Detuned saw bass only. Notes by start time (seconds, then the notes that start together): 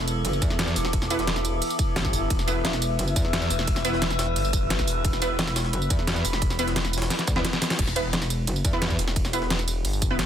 0.76 E1
2.13 G1
2.30 E1
3.50 E1
4.36 G1
4.87 E1
5.05 E1
6.25 E1
7.79 E1
8.99 E1
9.85 G1